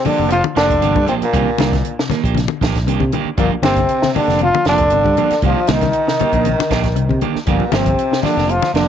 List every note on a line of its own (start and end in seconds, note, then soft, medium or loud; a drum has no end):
0.00 0.10 C3 medium
0.05 0.28 D3 medium
0.05 0.32 D3 medium
0.05 0.18 F3 medium
0.05 0.19 A#3 medium
0.05 0.18 D4 medium
0.05 0.31 D4 loud
0.05 0.17 G4 medium
0.05 open hi-hat medium
0.05 high conga medium
0.05 low conga medium
0.18 0.41 F1 medium
0.18 0.28 D3 medium
0.18 0.34 A#3 soft
0.18 0.34 D4 soft
0.18 0.33 G4 medium
0.28 0.40 C3 medium
0.28 0.40 F3 medium
0.28 0.43 F4 loud
0.28 closed hi-hat medium
0.32 0.44 F3 medium
0.44 0.61 D3 medium
0.44 high conga loud
0.55 0.82 F1 medium
0.55 1.04 D3 medium
0.55 1.05 D3 medium
0.55 0.72 F3 medium
0.55 0.72 A#3 medium
0.55 0.72 D4 medium
0.55 1.04 D4 loud
0.55 0.73 G4 medium
0.55 snare medium
0.55 closed hi-hat medium
0.70 kick medium
0.70 closed hi-hat medium
0.82 0.93 G1 medium
0.82 0.99 C3 medium
0.82 0.98 F3 medium
0.82 0.98 A#3 medium
0.82 0.98 D4 medium
0.82 0.98 G4 medium
0.82 closed hi-hat medium
0.96 1.06 G2 medium
0.96 kick medium
0.96 high conga medium
1.07 1.25 A#2 medium
1.07 1.14 C3 medium
1.07 1.15 C3 medium
1.07 1.24 F3 medium
1.07 1.24 A#3 medium
1.07 1.14 C4 medium
1.07 1.24 D4 medium
1.07 1.24 G4 medium
1.07 closed hi-hat medium
1.07 low conga medium
1.21 1.95 A#2 medium
1.21 1.95 A#3 medium
1.21 muted fingered electric bass stroke soft
1.21 closed hi-hat soft
1.33 1.45 C2 loud
1.33 1.49 D#3 medium
1.33 1.49 A#3 medium
1.33 1.49 D4 medium
1.33 1.50 G4 medium
1.33 muted clean electric guitar stroke medium
1.33 kick loud
1.33 closed hi-hat medium
1.58 1.81 C2 loud
1.58 1.69 D3 medium
1.58 1.75 D#3 medium
1.58 1.75 A#3 medium
1.58 1.75 D4 medium
1.58 1.75 G4 medium
1.58 snare medium
1.58 closed hi-hat medium
1.58 high conga medium
1.72 1.90 D3 medium
1.72 kick medium
1.72 snare soft
1.72 closed hi-hat medium
1.85 closed hi-hat medium
1.99 2.16 C3 medium
1.99 snare medium
2.10 2.24 D#3 medium
2.10 2.24 A#3 medium
2.10 snare soft
2.10 closed hi-hat medium
2.10 high conga medium
2.10 low conga medium
2.23 2.45 A#1 medium
2.23 2.39 A#3 soft
2.23 2.39 D4 medium
2.23 2.38 G4 medium
2.23 kick medium
2.23 closed hi-hat medium
2.35 2.45 C3 medium
2.35 snare soft
2.35 closed hi-hat medium
2.35 high conga medium
2.48 2.67 D3 medium
2.48 high conga medium
2.61 2.87 A#1 medium
2.61 2.77 D#3 medium
2.61 2.77 A#3 medium
2.61 2.78 D4 medium
2.61 2.78 G4 medium
2.61 kick medium
2.61 snare medium
2.61 closed hi-hat medium
2.75 kick medium
2.75 snare soft
2.75 closed hi-hat medium
2.87 2.98 C2 loud
2.87 3.04 C3 medium
2.87 3.03 D#3 medium
2.87 3.03 A#3 medium
2.87 3.03 D4 medium
2.87 3.04 G4 medium
2.87 closed hi-hat medium
3.00 3.10 C3 medium
3.00 kick medium
3.00 high conga medium
3.12 3.30 D3 medium
3.12 3.28 D#3 medium
3.12 3.29 A#3 medium
3.12 3.29 D4 medium
3.12 3.29 G4 medium
3.12 closed hi-hat medium
3.12 low conga medium
3.25 muted fingered electric bass stroke soft
3.37 3.49 G1 loud
3.37 3.49 A#2 medium
3.37 3.51 A#2 medium
3.37 3.54 F3 medium
3.37 3.56 F3 medium
3.37 3.54 A#3 medium
3.37 3.51 A#3 medium
3.37 3.54 D4 medium
3.37 3.54 G4 medium
3.37 kick loud
3.37 closed hi-hat medium
3.62 3.85 G1 medium
3.62 4.11 C3 medium
3.62 4.12 C3 medium
3.62 3.80 A#3 medium
3.62 4.11 C4 loud
3.62 3.80 D4 medium
3.62 3.80 G4 medium
3.62 muted clean electric guitar stroke medium
3.62 snare medium
3.62 closed hi-hat medium
3.62 high conga medium
3.76 3.95 D3 medium
3.76 kick medium
3.76 closed hi-hat medium
3.89 closed hi-hat medium
4.02 4.20 C3 medium
4.02 snare medium
4.02 high conga medium
4.14 4.40 D3 medium
4.14 4.28 A#3 medium
4.14 4.28 D4 medium
4.14 4.39 D4 loud
4.14 4.28 G4 medium
4.14 muted clean electric guitar stroke medium
4.14 open hi-hat medium
4.14 high conga medium
4.14 low conga medium
4.28 4.50 F1 loud
4.28 4.36 D3 medium
4.28 4.44 A#3 soft
4.28 4.44 D4 soft
4.28 4.43 G4 medium
4.28 snare soft
4.39 4.49 C3 medium
4.39 4.65 F3 medium
4.39 closed hi-hat medium
4.39 high conga medium
4.43 4.66 F4 loud
4.54 4.71 D3 medium
4.54 high conga loud
4.65 4.91 F1 medium
4.65 5.40 D3 medium
4.65 4.82 F3 medium
4.65 4.82 A#3 medium
4.65 4.82 D4 medium
4.65 5.40 D4 loud
4.65 4.82 G4 medium
4.65 snare medium
4.65 closed hi-hat soft
4.70 5.40 D3 medium
4.78 kick medium
4.78 closed hi-hat medium
4.90 5.03 G1 loud
4.90 5.09 C3 medium
4.90 closed hi-hat medium
5.04 5.15 G2 medium
5.04 kick medium
5.04 high conga medium
5.17 5.34 D3 medium
5.17 5.33 F3 medium
5.17 5.33 A#3 medium
5.17 5.34 D4 medium
5.17 5.34 G4 medium
5.17 closed hi-hat soft
5.17 low conga medium
5.31 muted fingered electric bass stroke soft
5.31 snare soft
5.31 closed hi-hat medium
5.42 5.54 C2 loud
5.42 5.59 D#3 medium
5.42 5.60 F3 medium
5.42 5.74 F3 medium
5.42 5.59 A#3 medium
5.42 5.59 D4 medium
5.42 5.72 F4 loud
5.42 5.59 G4 medium
5.42 kick medium
5.42 closed hi-hat medium
5.47 5.74 F3 medium
5.67 5.90 C2 loud
5.67 5.77 D3 medium
5.67 5.84 D#3 medium
5.67 5.85 A#3 medium
5.67 5.85 D4 medium
5.67 7.23 D#4 loud
5.67 muted clean electric guitar stroke medium
5.67 snare medium
5.67 closed hi-hat medium
5.67 high conga loud
5.72 7.23 D#3 medium
5.81 5.99 D3 medium
5.81 kick medium
5.81 snare soft
5.81 closed hi-hat medium
5.81 high conga medium
5.93 closed hi-hat medium
6.07 6.24 C3 medium
6.07 snare medium
6.19 6.33 D#3 medium
6.19 6.32 A#3 medium
6.19 6.32 G4 medium
6.19 muted clean electric guitar stroke medium
6.19 closed hi-hat medium
6.19 high conga medium
6.19 low conga medium
6.32 6.54 A#1 medium
6.32 6.42 D3 medium
6.32 6.48 A#3 soft
6.32 6.48 D4 soft
6.32 muted clean electric guitar stroke medium
6.32 kick medium
6.32 closed hi-hat medium
6.45 6.54 C3 medium
6.45 closed hi-hat medium
6.45 high conga medium
6.59 6.75 D3 medium
6.59 snare soft
6.59 high conga loud
6.70 6.96 A#1 medium
6.70 6.86 D#3 medium
6.70 6.86 A#3 medium
6.70 6.86 D4 medium
6.70 6.86 G4 medium
6.70 kick medium
6.70 snare medium
6.70 closed hi-hat medium
6.84 kick medium
6.84 snare soft
6.84 closed hi-hat medium
6.96 7.07 C2 medium
6.96 7.13 C3 medium
6.96 closed hi-hat medium
7.09 7.19 C3 medium
7.09 kick medium
7.09 high conga medium
7.21 7.39 D3 medium
7.21 7.37 D#3 medium
7.21 7.37 A#3 medium
7.21 7.38 D4 medium
7.21 7.38 G4 medium
7.21 closed hi-hat soft
7.21 low conga medium
7.36 muted fingered electric bass stroke soft
7.36 snare soft
7.46 7.58 G1 loud
7.46 7.71 A#2 medium
7.46 7.77 A#2 medium
7.46 7.64 F3 medium
7.46 7.63 F3 medium
7.46 7.74 A#3 medium
7.46 7.63 A#3 medium
7.46 7.63 D4 medium
7.46 7.63 G4 medium
7.46 kick loud
7.46 closed hi-hat medium
7.60 low conga medium
7.70 7.94 G1 loud
7.70 8.22 C3 medium
7.70 7.81 D3 medium
7.70 7.88 F3 medium
7.70 7.88 A#3 medium
7.70 8.22 C4 medium
7.70 7.89 D4 medium
7.70 closed hi-hat medium
7.70 high conga medium
7.74 8.24 C3 medium
7.74 7.89 G4 medium
7.74 snare medium
7.86 8.02 F3 medium
7.86 kick medium
7.86 closed hi-hat medium
7.86 high conga medium
7.99 closed hi-hat medium
8.11 8.28 C3 medium
8.11 snare medium
8.23 8.48 D3 medium
8.23 8.51 D3 medium
8.23 8.37 F3 medium
8.23 8.37 A#3 medium
8.23 8.52 D4 loud
8.23 8.36 D4 medium
8.23 8.35 G4 medium
8.23 snare soft
8.23 open hi-hat medium
8.23 high conga medium
8.23 low conga medium
8.37 8.59 F1 loud
8.37 8.45 D3 medium
8.37 8.52 A#3 soft
8.37 8.52 D4 soft
8.37 8.51 G4 soft
8.37 snare soft
8.46 8.73 F3 medium
8.46 8.74 F3 medium
8.46 muted clean electric guitar stroke medium
8.46 closed hi-hat medium
8.50 8.74 F4 loud
8.62 8.79 D3 medium
8.62 snare soft
8.62 high conga loud
8.74 8.88 F1 medium
8.74 8.88 D3 medium
8.74 8.88 F3 medium
8.74 8.88 A#3 medium
8.74 8.88 D4 medium
8.74 8.88 G4 medium
8.74 snare medium
8.74 closed hi-hat soft